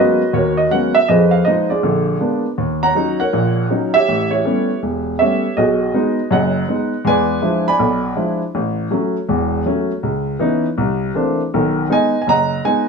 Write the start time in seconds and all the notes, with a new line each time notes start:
Already playing: F#3 G#3 A#3 B3 C#4 F#4 B4 D#5
0.33 D#2 F#4 A#4 C#5
0.57 D#5
0.71 F#3 G#3 A#3 B3 C#4 F#5
0.95 E5
1.08 F2 F3 G#4 B4 D#5
1.31 F5
1.45 F3 G#3 D#4 D#5
1.70 F4 G#4 D5
1.83 A#1 D3
2.20 G#3 A#3 B3 D4
2.58 D#2
2.83 C#5 F#5 A#5
2.95 F#3 C#4 D#4
3.20 A#4 C#5 F#5
3.33 A#1 A#2
3.70 F#3 C#4 D#4
3.94 G4 C#5 E5
4.09 A1
4.31 E4 G4 C#5
4.45 G3 A3 B3 C#4
4.83 E1
5.19 G3 A3 B3 C#4 G4 C#5 E5
5.57 B1 F#4 G#4 D#5
5.94 G#3 B3 D#4
6.31 F#1 F#2 D#5 F#5
6.68 G#3 B3 D#4
7.04 E2 G#3 B4 D5 G#5
7.42 F3 G#3 D4 E4
7.68 D5 G#5 B5
7.79 B1
8.16 F3 G#3 D4 E4
8.55 A1
8.91 F#3 A3 C#4
9.28 E1 E2
9.66 F#3 A3 C#4
10.03 C#2
10.39 E3 B3 C#4 D#4
10.78 C2
11.15 E3 A3 A#3 C4 D4
11.54 B1 D#3
11.89 G#3 B3 D#4 D#5 G#5
12.22 G#5
12.27 F#1 D#5 F#5 A#5
12.65 G#3 B3 D#4 G#5